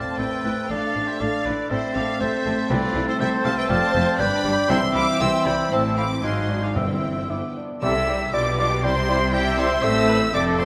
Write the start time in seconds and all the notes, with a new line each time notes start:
Already playing: A3 C4 C5 D5 F5 A5 A6
0.18 A1 A2 C4 E4 B4 C5 E5 G5
0.44 A1 A2 C4 E4 B4
0.69 A1 A2 A3 D4 A4 D5 F5 A6
0.95 A1 A2 A3 D4
1.07 G4 C5 E5
1.20 A1 A2 A3 D4 A4 D5 F5 A6
1.46 A1 A2 A3 D4 F4 B4 D5
1.70 A1 A2 A3 C4 E4 A4 C5 E5 A6
1.94 A1 A2 A3 C4 A4 D5 F5
2.20 A1 A2 A3 C4 A4 C5 E5 A6
2.45 A1 A2 A3 C4
2.70 C2 C3 A3 C4 E4 F4 A4 B4 D5 A6
2.95 C2 C3 A3 E4
3.08 E4 A4 C5
3.19 C2 C3 A3 C4 E4 A4 C5 E5 A6
3.44 C2 C3 A3 E4 C5 F5 A5
3.56 B4 E5 G5
3.69 F1 F2 A3 C4 F4 C5 D5 F5 A5 A6
3.94 F1 F2 A3 F4 C5
4.19 G1 G2 G3 D4 B4 D5 G5 B5 G6
4.44 G1 G2 G3 D4 D5
4.69 C2 C3 E3 G3 C4 E4 E5 G5 C6 E6
4.94 C2 C3 G3 E4 F5 B5 D6
5.20 C2 C3 G3 C4 E4 G5 C6 E6
5.45 C2 C3 G3 E4 D5 G5 B5
5.71 A1 A2 C4 E4 C5 E5 A5 E6
5.97 C4 F5 B5 D6
6.22 G#1 G#2 F#3 D#4 F#4 D#5 F5 G#5 C6 F#6
6.50 D4
6.62 G#4 D5 F5
6.75 G1 G2 E3 C4 E4 C5 E5 G5 E6
7.29 G1 G2 D3 B3 D4 E4 D6
7.56 D4
7.82 C2 C3 G3 E4 G4 A4 E5 E6
7.95 C4 G4
8.08 G3 C4 E4 G4
8.21 C4 G4
8.32 B1 B2 G3 D4 F4 G4 D5 D6
8.46 F4 B4
8.58 G3 D4 F4 G4 D5 D6
8.71 F4 B4
8.83 C2 C3 G3 C4 E4 G4 C5 C6
8.96 E4 C5
9.08 G3 C4 E4 G4
9.20 E4 C5
9.32 G3 C4 E4 G4 E5 G5
9.46 E4 C5
9.57 G3 C4 E4 G4 C5 C6
9.71 E4 C5
9.82 A1 A2 A3 C4 A4 C5 E5 E6
10.08 A3 C4 B4
10.33 F1 F2 A3 C4 D4 A4 D5 D6
10.59 A3 C4 C5 C6